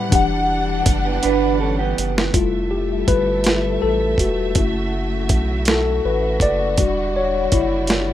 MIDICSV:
0, 0, Header, 1, 6, 480
1, 0, Start_track
1, 0, Tempo, 740741
1, 76, Time_signature, 6, 3, 24, 8
1, 5268, End_track
2, 0, Start_track
2, 0, Title_t, "Tine electric piano"
2, 0, Program_c, 0, 4
2, 0, Control_c, 0, 64, 127
2, 62, Note_on_c, 0, 52, 77
2, 73, Note_on_c, 0, 62, 73
2, 84, Control_c, 0, 64, 0
2, 85, Note_on_c, 0, 67, 68
2, 99, Note_on_c, 0, 78, 80
2, 191, Control_c, 0, 64, 127
2, 1483, Note_off_c, 0, 52, 0
2, 1488, Note_off_c, 0, 62, 0
2, 1494, Note_off_c, 0, 67, 0
2, 1501, Note_off_c, 0, 78, 0
2, 1511, Note_on_c, 0, 55, 54
2, 1517, Note_on_c, 0, 57, 47
2, 1517, Note_on_c, 0, 65, 80
2, 1522, Note_on_c, 0, 64, 54
2, 1524, Control_c, 0, 64, 0
2, 1638, Control_c, 0, 64, 127
2, 1755, Note_on_c, 0, 67, 81
2, 1763, Note_off_c, 0, 65, 0
2, 1997, Note_on_c, 0, 71, 93
2, 2003, Note_off_c, 0, 67, 0
2, 2474, Note_on_c, 0, 69, 90
2, 2491, Note_off_c, 0, 71, 0
2, 2722, Note_off_c, 0, 69, 0
2, 2723, Note_on_c, 0, 66, 74
2, 2927, Note_off_c, 0, 55, 0
2, 2930, Note_off_c, 0, 57, 0
2, 2933, Note_off_c, 0, 64, 0
2, 2951, Note_on_c, 0, 57, 55
2, 2955, Note_on_c, 0, 61, 46
2, 2962, Note_on_c, 0, 64, 58
2, 2963, Control_c, 0, 64, 0
2, 3094, Control_c, 0, 64, 127
2, 3173, Note_off_c, 0, 66, 0
2, 3648, Note_off_c, 0, 57, 0
2, 3650, Note_off_c, 0, 61, 0
2, 3653, Note_off_c, 0, 64, 0
2, 3681, Note_on_c, 0, 69, 97
2, 3924, Note_on_c, 0, 71, 86
2, 3925, Note_off_c, 0, 69, 0
2, 4163, Note_on_c, 0, 74, 99
2, 4167, Note_off_c, 0, 71, 0
2, 4397, Note_on_c, 0, 55, 56
2, 4400, Note_on_c, 0, 62, 48
2, 4403, Control_c, 0, 64, 0
2, 4403, Note_on_c, 0, 66, 61
2, 4520, Control_c, 0, 64, 127
2, 4642, Note_on_c, 0, 73, 91
2, 4654, Note_off_c, 0, 74, 0
2, 4882, Note_on_c, 0, 64, 78
2, 4886, Note_off_c, 0, 73, 0
2, 5268, Note_off_c, 0, 55, 0
2, 5268, Note_off_c, 0, 62, 0
2, 5268, Note_off_c, 0, 64, 0
2, 5268, Note_off_c, 0, 66, 0
2, 5268, End_track
3, 0, Start_track
3, 0, Title_t, "Clean electric guitar"
3, 0, Program_c, 1, 27
3, 677, Note_on_c, 1, 67, 69
3, 680, Note_on_c, 1, 59, 61
3, 790, Note_off_c, 1, 67, 0
3, 792, Note_off_c, 1, 59, 0
3, 798, Note_on_c, 1, 62, 67
3, 799, Note_on_c, 1, 71, 81
3, 1025, Note_off_c, 1, 62, 0
3, 1025, Note_off_c, 1, 71, 0
3, 1040, Note_on_c, 1, 69, 80
3, 1046, Note_on_c, 1, 61, 69
3, 1152, Note_off_c, 1, 69, 0
3, 1155, Note_off_c, 1, 61, 0
3, 1159, Note_on_c, 1, 67, 80
3, 1166, Note_on_c, 1, 59, 70
3, 1499, Note_off_c, 1, 67, 0
3, 1503, Note_off_c, 1, 59, 0
3, 5268, End_track
4, 0, Start_track
4, 0, Title_t, "String section"
4, 0, Program_c, 2, 48
4, 0, Note_on_c, 2, 55, 73
4, 0, Note_on_c, 2, 59, 79
4, 0, Note_on_c, 2, 78, 89
4, 66, Note_off_c, 2, 59, 0
4, 83, Note_on_c, 2, 52, 80
4, 83, Note_on_c, 2, 62, 76
4, 1492, Note_off_c, 2, 78, 0
4, 1495, Note_off_c, 2, 55, 0
4, 1505, Note_off_c, 2, 52, 0
4, 1505, Note_off_c, 2, 62, 0
4, 1515, Note_on_c, 2, 69, 73
4, 1517, Note_on_c, 2, 57, 64
4, 1518, Note_on_c, 2, 76, 65
4, 1519, Note_on_c, 2, 55, 75
4, 2941, Note_off_c, 2, 69, 0
4, 2943, Note_off_c, 2, 55, 0
4, 2956, Note_on_c, 2, 66, 80
4, 2960, Note_on_c, 2, 49, 69
4, 4370, Note_off_c, 2, 57, 0
4, 4371, Note_off_c, 2, 76, 0
4, 4383, Note_off_c, 2, 49, 0
4, 4399, Note_on_c, 2, 55, 70
4, 4400, Note_on_c, 2, 64, 68
4, 4403, Note_on_c, 2, 50, 74
4, 5268, Note_off_c, 2, 50, 0
4, 5268, Note_off_c, 2, 55, 0
4, 5268, Note_off_c, 2, 64, 0
4, 5268, Note_off_c, 2, 66, 0
4, 5268, End_track
5, 0, Start_track
5, 0, Title_t, "Analog synth bass"
5, 0, Program_c, 3, 38
5, 83, Note_on_c, 3, 28, 92
5, 534, Note_off_c, 3, 28, 0
5, 563, Note_on_c, 3, 30, 102
5, 776, Note_off_c, 3, 30, 0
5, 809, Note_on_c, 3, 31, 100
5, 1256, Note_off_c, 3, 31, 0
5, 1287, Note_on_c, 3, 30, 91
5, 1498, Note_off_c, 3, 30, 0
5, 1522, Note_on_c, 3, 29, 89
5, 1973, Note_off_c, 3, 29, 0
5, 1999, Note_on_c, 3, 31, 86
5, 2451, Note_off_c, 3, 31, 0
5, 2482, Note_on_c, 3, 33, 84
5, 2695, Note_off_c, 3, 33, 0
5, 2713, Note_on_c, 3, 28, 91
5, 2958, Note_on_c, 3, 30, 107
5, 2968, Note_off_c, 3, 28, 0
5, 3437, Note_on_c, 3, 35, 90
5, 3447, Note_off_c, 3, 30, 0
5, 3891, Note_off_c, 3, 35, 0
5, 3921, Note_on_c, 3, 33, 85
5, 4135, Note_off_c, 3, 33, 0
5, 4153, Note_on_c, 3, 30, 83
5, 4398, Note_on_c, 3, 28, 92
5, 4407, Note_off_c, 3, 30, 0
5, 4851, Note_off_c, 3, 28, 0
5, 4877, Note_on_c, 3, 30, 85
5, 5268, Note_off_c, 3, 30, 0
5, 5268, End_track
6, 0, Start_track
6, 0, Title_t, "Drums"
6, 79, Note_on_c, 9, 36, 106
6, 79, Note_on_c, 9, 42, 80
6, 144, Note_off_c, 9, 36, 0
6, 144, Note_off_c, 9, 42, 0
6, 556, Note_on_c, 9, 42, 75
6, 558, Note_on_c, 9, 36, 100
6, 621, Note_off_c, 9, 42, 0
6, 623, Note_off_c, 9, 36, 0
6, 795, Note_on_c, 9, 42, 65
6, 860, Note_off_c, 9, 42, 0
6, 1285, Note_on_c, 9, 42, 60
6, 1350, Note_off_c, 9, 42, 0
6, 1413, Note_on_c, 9, 38, 92
6, 1478, Note_off_c, 9, 38, 0
6, 1516, Note_on_c, 9, 36, 91
6, 1516, Note_on_c, 9, 42, 71
6, 1581, Note_off_c, 9, 36, 0
6, 1581, Note_off_c, 9, 42, 0
6, 1994, Note_on_c, 9, 42, 64
6, 1995, Note_on_c, 9, 36, 86
6, 2059, Note_off_c, 9, 36, 0
6, 2059, Note_off_c, 9, 42, 0
6, 2229, Note_on_c, 9, 42, 60
6, 2245, Note_on_c, 9, 38, 106
6, 2293, Note_off_c, 9, 42, 0
6, 2310, Note_off_c, 9, 38, 0
6, 2708, Note_on_c, 9, 36, 76
6, 2718, Note_on_c, 9, 42, 60
6, 2772, Note_off_c, 9, 36, 0
6, 2782, Note_off_c, 9, 42, 0
6, 2948, Note_on_c, 9, 42, 73
6, 2952, Note_on_c, 9, 36, 89
6, 3013, Note_off_c, 9, 42, 0
6, 3017, Note_off_c, 9, 36, 0
6, 3430, Note_on_c, 9, 42, 69
6, 3432, Note_on_c, 9, 36, 89
6, 3494, Note_off_c, 9, 42, 0
6, 3497, Note_off_c, 9, 36, 0
6, 3664, Note_on_c, 9, 42, 60
6, 3680, Note_on_c, 9, 38, 108
6, 3728, Note_off_c, 9, 42, 0
6, 3745, Note_off_c, 9, 38, 0
6, 4147, Note_on_c, 9, 36, 78
6, 4154, Note_on_c, 9, 42, 58
6, 4212, Note_off_c, 9, 36, 0
6, 4219, Note_off_c, 9, 42, 0
6, 4390, Note_on_c, 9, 42, 69
6, 4393, Note_on_c, 9, 36, 91
6, 4455, Note_off_c, 9, 42, 0
6, 4458, Note_off_c, 9, 36, 0
6, 4872, Note_on_c, 9, 42, 68
6, 4874, Note_on_c, 9, 36, 90
6, 4936, Note_off_c, 9, 42, 0
6, 4939, Note_off_c, 9, 36, 0
6, 5103, Note_on_c, 9, 42, 60
6, 5119, Note_on_c, 9, 38, 101
6, 5167, Note_off_c, 9, 42, 0
6, 5184, Note_off_c, 9, 38, 0
6, 5268, End_track
0, 0, End_of_file